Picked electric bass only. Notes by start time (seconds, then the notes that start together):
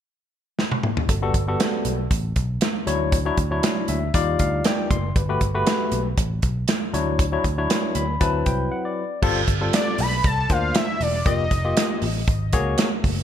1.09 G1
1.34 G1
1.85 B1
2.11 A1
2.36 B1
2.87 D2
3.38 D2
3.89 D2
4.14 D#2
4.40 D2
4.91 F#1
5.16 G1
5.41 G1
5.92 B1
6.18 A1
6.43 B1
6.94 D2
7.44 D2
7.95 D2
8.21 D2
8.46 C2
9.23 G1
9.48 G1
9.99 B1
10.24 C2
10.50 D2
11.01 E1
11.26 F1
11.51 F1
12.02 A1
12.28 G#1
12.53 C#2
13.04 F#1